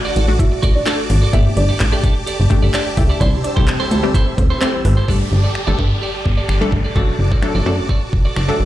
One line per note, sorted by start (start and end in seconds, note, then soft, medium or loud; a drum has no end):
0.00 0.20 A3 medium
0.00 0.14 D4 medium
0.00 0.20 D4 medium
0.00 0.20 F#4 medium
0.00 1.31 F#4 medium
0.00 0.13 D5 medium
0.00 3.17 D5 medium
0.00 1.29 A5 medium
0.00 3.17 D6 medium
0.05 0.15 F#4 medium
0.05 0.16 A4 medium
0.05 0.16 D5 medium
0.16 0.39 A1 loud
0.16 0.31 F#4 medium
0.16 0.28 A4 medium
0.16 0.27 D5 medium
0.16 closed hi-hat medium
0.28 0.77 A3 medium
0.28 0.77 D4 medium
0.28 0.77 F#4 medium
0.39 0.49 E4 medium
0.39 0.49 E5 medium
0.39 muted clean electric guitar stroke soft
0.39 kick loud
0.39 closed hi-hat loud
0.52 muted clean electric guitar stroke soft
0.62 0.78 A1 medium
0.62 0.81 F#4 medium
0.62 0.75 A4 medium
0.62 0.74 D5 loud
0.62 kick medium
0.62 closed hi-hat medium
0.75 0.84 D4 medium
0.75 0.84 D5 medium
0.75 muted clean electric guitar stroke soft
0.86 1.25 A3 medium
0.86 1.26 D4 medium
0.86 1.04 F#4 loud
0.86 1.26 A4 medium
0.86 0.98 A4 medium
0.86 0.97 D5 medium
0.86 clap loud
0.86 closed hi-hat loud
0.99 muted clean electric guitar stroke soft
1.10 1.25 G#1 loud
1.10 muted clean electric guitar stroke medium
1.10 open hi-hat medium
1.22 1.33 F#4 medium
1.22 1.33 A4 medium
1.22 1.33 D5 medium
1.33 1.48 G1 loud
1.33 1.82 A3 medium
1.33 1.82 D4 medium
1.33 1.51 E4 medium
1.33 1.51 G4 medium
1.33 5.04 G4 medium
1.33 1.82 G4 medium
1.33 1.46 A4 medium
1.33 1.44 D5 loud
1.33 1.51 E5 loud
1.33 kick loud
1.33 closed hi-hat loud
1.46 muted clean electric guitar stroke medium
1.57 1.72 G1 loud
1.57 2.01 D4 medium
1.57 2.01 D5 medium
1.57 muted clean electric guitar stroke soft
1.57 closed hi-hat medium
1.69 1.79 G4 medium
1.69 1.79 A4 medium
1.69 1.80 D5 medium
1.80 1.95 A1 medium
1.80 muted clean electric guitar stroke medium
1.80 clap loud
1.80 closed hi-hat loud
1.92 2.41 A3 medium
1.92 2.41 D4 medium
1.92 2.41 G4 medium
1.92 2.02 G4 medium
1.92 2.03 A4 medium
1.92 2.03 D5 medium
2.03 2.18 G4 medium
2.03 2.16 A4 medium
2.03 2.15 D5 medium
2.03 kick loud
2.03 closed hi-hat medium
2.16 muted clean electric guitar stroke soft
2.26 2.45 G4 medium
2.26 2.39 A4 medium
2.26 2.38 D5 medium
2.26 closed hi-hat loud
2.39 2.47 G1 medium
2.39 muted clean electric guitar stroke soft
2.50 2.90 A3 loud
2.50 2.90 D4 medium
2.50 2.90 G4 loud
2.50 muted clean electric guitar stroke medium
2.50 kick medium
2.50 closed hi-hat medium
2.62 2.70 G1 medium
2.62 2.72 G4 medium
2.62 2.73 A4 medium
2.62 2.74 D5 medium
2.73 2.84 D4 medium
2.73 2.92 G4 medium
2.73 2.86 A4 medium
2.73 2.83 D5 medium
2.73 2.85 D5 loud
2.73 clap loud
2.73 closed hi-hat loud
2.86 muted clean electric guitar stroke soft
2.97 3.12 C#2 loud
2.97 3.21 A3 medium
2.97 3.21 D4 medium
2.97 3.07 E4 medium
2.97 3.21 G4 loud
2.97 3.07 E5 medium
2.97 muted clean electric guitar stroke medium
2.97 kick loud
2.97 open hi-hat medium
3.09 3.20 G4 medium
3.09 3.20 A4 medium
3.09 3.21 D5 medium
3.20 3.36 C2 loud
3.20 3.38 D4 medium
3.20 3.39 E4 medium
3.20 3.32 A4 medium
3.20 5.06 C5 medium
3.20 3.32 C5 medium
3.20 3.38 D5 loud
3.20 5.06 E6 medium
3.20 kick loud
3.20 closed hi-hat loud
3.33 muted clean electric guitar stroke soft
3.44 3.89 D4 medium
3.44 3.88 D5 medium
3.44 muted clean electric guitar stroke soft
3.44 closed hi-hat medium
3.56 3.72 C2 loud
3.56 3.95 E3 medium
3.56 3.95 G3 medium
3.56 3.95 A3 medium
3.56 3.95 C4 medium
3.56 3.66 E4 medium
3.56 3.95 G4 medium
3.56 3.67 A4 medium
3.56 3.67 C5 medium
3.56 kick loud
3.68 clap loud
3.68 closed hi-hat loud
3.80 3.89 E4 medium
3.80 3.90 A4 medium
3.80 3.91 C5 medium
3.91 4.14 D2 loud
3.91 4.05 E4 medium
3.91 4.03 A4 medium
3.91 4.02 C5 medium
3.91 closed hi-hat medium
4.03 4.52 E3 medium
4.03 4.52 G3 medium
4.03 4.52 A3 medium
4.03 4.52 C4 medium
4.03 4.52 G4 medium
4.03 muted clean electric guitar stroke soft
4.14 4.33 E4 medium
4.14 4.27 A4 loud
4.14 4.26 C5 loud
4.14 kick loud
4.14 closed hi-hat loud
4.27 muted clean electric guitar stroke medium
4.38 4.53 D2 medium
4.38 4.48 C4 medium
4.38 4.47 C5 medium
4.38 muted clean electric guitar stroke soft
4.38 kick medium
4.38 closed hi-hat medium
4.50 4.60 E4 medium
4.50 4.61 A4 medium
4.50 4.61 C5 medium
4.61 5.01 E3 medium
4.61 5.01 G3 medium
4.61 5.01 A3 medium
4.61 5.01 C4 medium
4.61 4.71 C4 medium
4.61 4.80 E4 medium
4.61 5.01 G4 medium
4.61 4.73 A4 medium
4.61 4.70 C5 medium
4.61 4.72 C5 loud
4.61 clap loud
4.61 closed hi-hat loud
4.74 muted clean electric guitar stroke soft
4.85 5.00 G#1 loud
4.85 4.95 B3 medium
4.85 4.94 B4 medium
4.85 muted clean electric guitar stroke soft
4.85 open hi-hat medium
4.97 5.07 E4 medium
4.97 5.07 A4 medium
4.97 5.09 C5 medium
5.08 5.23 G1 loud
5.08 5.57 G3 medium
5.08 5.57 A3 medium
5.08 5.57 D4 medium
5.08 5.26 G4 medium
5.08 6.94 G4 medium
5.08 5.57 A4 medium
5.08 5.20 A4 medium
5.08 8.65 D5 medium
5.08 5.19 D5 medium
5.08 8.65 A5 medium
5.08 8.65 D6 medium
5.08 kick loud
5.08 downlifter medium
5.20 muted clean electric guitar stroke soft
5.31 5.47 G1 medium
5.31 muted clean electric guitar stroke soft
5.44 5.54 G4 soft
5.44 5.54 A4 medium
5.44 5.55 D5 medium
5.55 finger snap loud
5.55 muted clean electric guitar stroke soft
5.67 5.75 G1 loud
5.67 6.45 G3 medium
5.67 6.45 A3 medium
5.67 6.45 D4 medium
5.67 5.77 G4 medium
5.67 5.78 A4 medium
5.67 6.45 A4 medium
5.67 5.78 D5 medium
5.78 5.94 G2 loud
5.78 5.93 G4 medium
5.78 5.90 A4 medium
5.78 5.89 D5 medium
5.78 kick medium
5.90 muted clean electric guitar stroke medium
6.02 6.20 G4 medium
6.02 6.14 A4 medium
6.02 6.13 D5 loud
6.14 muted clean electric guitar stroke soft
6.25 6.41 G1 loud
6.25 muted clean electric guitar stroke soft
6.25 kick medium
6.37 6.47 G4 medium
6.37 6.48 A4 medium
6.37 6.49 D5 medium
6.48 6.64 G1 medium
6.48 6.67 G4 medium
6.48 6.61 A4 medium
6.48 6.60 D5 loud
6.48 finger snap loud
6.61 6.90 G3 loud
6.61 6.90 A3 medium
6.61 6.90 D4 medium
6.61 6.90 A4 loud
6.61 muted clean electric guitar stroke soft
6.72 6.87 G1 loud
6.72 muted clean electric guitar stroke soft
6.72 kick medium
6.84 6.95 G4 medium
6.84 6.95 A4 medium
6.84 6.96 D5 medium
6.95 7.11 F#1 loud
6.95 7.35 F#3 loud
6.95 7.35 A3 medium
6.95 7.35 D4 medium
6.95 7.14 F#4 medium
6.95 8.65 F#4 medium
6.95 7.35 A4 loud
6.95 7.08 A4 medium
6.95 7.07 D5 medium
6.95 kick loud
7.08 muted clean electric guitar stroke soft
7.19 7.34 F#1 medium
7.19 muted clean electric guitar stroke soft
7.31 7.41 F#4 medium
7.31 7.42 A4 medium
7.31 7.42 D5 medium
7.31 kick loud
7.42 7.62 F#3 loud
7.42 7.62 A3 medium
7.42 7.62 D4 medium
7.42 7.62 A4 loud
7.42 finger snap loud
7.42 muted clean electric guitar stroke soft
7.55 7.62 F#1 loud
7.55 7.65 F#4 medium
7.55 7.65 A4 medium
7.55 7.66 D5 medium
7.66 7.81 F#2 loud
7.66 8.34 F#3 medium
7.66 8.34 A3 medium
7.66 8.34 D4 medium
7.66 7.81 F#4 medium
7.66 8.34 A4 loud
7.66 7.78 A4 medium
7.66 7.77 D5 medium
7.78 muted clean electric guitar stroke soft
7.89 8.07 F#4 medium
7.89 8.01 A4 medium
7.89 8.00 D5 medium
7.89 kick loud
8.02 muted clean electric guitar stroke soft
8.13 8.28 F#1 medium
8.13 muted clean electric guitar stroke soft
8.13 kick medium
8.25 8.35 F#4 medium
8.25 8.36 A4 medium
8.25 8.36 D5 medium
8.36 8.51 F#1 medium
8.36 8.54 F#4 medium
8.36 8.49 A4 medium
8.36 8.48 D5 medium
8.36 finger snap loud
8.48 8.65 F#3 medium
8.48 8.65 A3 medium
8.48 8.65 D4 medium
8.48 8.65 A4 loud
8.48 muted clean electric guitar stroke soft
8.60 8.65 G#1 loud
8.60 muted clean electric guitar stroke soft